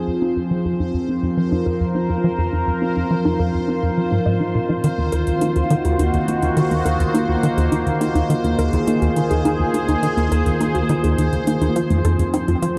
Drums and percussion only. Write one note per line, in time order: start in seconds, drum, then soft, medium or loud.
4.84 closed hi-hat medium
4.84 low bongo soft
5.12 closed hi-hat medium
5.12 low bongo medium
5.27 closed hi-hat soft
5.41 closed hi-hat medium
5.56 closed hi-hat soft
5.56 low bongo soft
5.70 closed hi-hat medium
5.85 closed hi-hat medium
5.85 low bongo medium
5.99 closed hi-hat medium
6.14 closed hi-hat soft
6.28 closed hi-hat medium
6.28 low bongo soft
6.42 closed hi-hat soft
6.57 closed hi-hat medium
6.57 low bongo medium
6.71 closed hi-hat soft
6.86 closed hi-hat medium
7.00 closed hi-hat soft
7.00 low bongo soft
7.15 closed hi-hat medium
7.29 low bongo medium
7.43 closed hi-hat medium
7.58 closed hi-hat soft
7.72 closed hi-hat medium
7.72 low bongo soft
7.87 closed hi-hat soft
8.01 closed hi-hat medium
8.01 low bongo medium
8.16 closed hi-hat medium
8.30 closed hi-hat medium
8.44 closed hi-hat soft
8.44 low bongo soft
8.59 closed hi-hat medium
8.73 closed hi-hat medium
8.73 low bongo medium
8.88 closed hi-hat medium
9.02 closed hi-hat soft
9.16 closed hi-hat medium
9.16 low bongo soft
9.31 closed hi-hat soft
9.45 closed hi-hat medium
9.45 low bongo medium
9.74 closed hi-hat medium
9.89 closed hi-hat soft
9.89 low bongo soft
10.03 closed hi-hat medium
10.18 closed hi-hat soft
10.18 low bongo medium
10.32 closed hi-hat medium
10.46 closed hi-hat medium
10.61 closed hi-hat medium
10.61 low bongo soft
10.75 closed hi-hat soft
10.89 closed hi-hat medium
10.89 low bongo medium
11.04 closed hi-hat medium
11.18 closed hi-hat medium
11.33 closed hi-hat soft
11.33 low bongo soft
11.47 closed hi-hat medium
11.62 closed hi-hat soft
11.62 low bongo medium
11.76 closed hi-hat medium
11.90 closed hi-hat soft
12.05 closed hi-hat medium
12.05 low bongo soft
12.19 closed hi-hat medium
12.34 closed hi-hat medium
12.34 low bongo medium
12.48 closed hi-hat soft
12.63 closed hi-hat medium